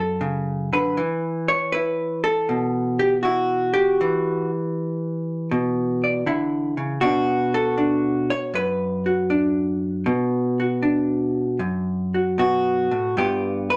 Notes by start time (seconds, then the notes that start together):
Already playing: F#2 B3 D5
0.00 A4
0.21 C#3
0.73 D3 B4
0.97 E3
1.48 C#5
1.72 E4 B4
2.24 A4
2.49 B2
2.99 G4
3.23 E4 F#4
3.74 G4
4.01 E3
5.51 B2
6.04 D5
6.26 D3 E4
6.77 C#3
7.01 B2 D4 F#4
7.54 A4
7.78 D4
8.30 C#5
8.54 F#2 B4
9.06 F#4
9.30 D4
10.06 B2
10.60 F#4
10.82 D4
11.59 F#2
12.14 F#4
12.38 B2 F#4
12.91 A2
13.17 G2 G3 B3 F4 G4
13.70 B4